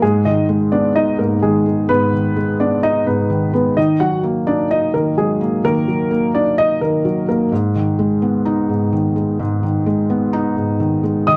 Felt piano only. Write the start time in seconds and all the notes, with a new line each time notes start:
0.02 G#2
0.26 D#3
0.49 G#3
0.72 B3
0.95 D#4
1.19 G#2
1.42 D#3
1.66 G#3
1.89 G#2
2.13 D#3
2.36 G#3
2.60 B3
2.83 D#4
3.06 G#2
3.30 D#3
3.53 G#3
3.77 D#3
4.00 F#3
4.23 A#3
4.47 D#4
4.71 D#5
4.94 D#3
5.18 F#3
5.41 A#3
5.64 D#3
5.88 F#3
6.11 A#3
6.35 D#4
6.58 D#5
6.82 D#3
7.05 F#3
7.28 A#3
7.52 G#2
7.76 D#3
7.99 G#3
8.22 B3
8.45 D#4
8.69 G#2
8.93 D#3
9.16 G#3
9.39 G#2
9.63 D#3
9.86 G#3
10.10 B3
10.33 D#4
10.56 G#2
10.80 D#3
11.03 G#3
11.27 D#3